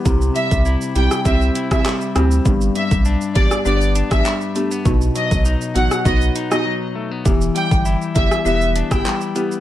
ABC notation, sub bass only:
X:1
M:4/4
L:1/16
Q:1/4=100
K:Em
V:1 name="Sub bass" clef=bass
C,,2 z C,,2 z B,,, z C,,2 z4 D,,2 | G,,,2 z B,,,2 z A,,, z G,,,3 A,,, z4 | B,,,2 z B,,,2 z A,,, z B,,,2 z6 | E,,,2 z G,,,2 z F,,, z E,,,3 G,,, z4 |]